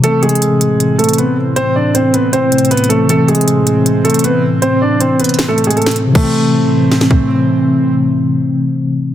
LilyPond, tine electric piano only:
\new Staff \with { instrumentName = "Tine electric piano" } { \clef bass \time 4/4 \key a \minor \tempo 4 = 157 <c e c'>1~ | <c e c'>2~ <c e c'>8 <c e a c'>4. | <c e c'>1~ | <c e c'>1 |
<c e a c'>1~ | <c e a c'>1 | }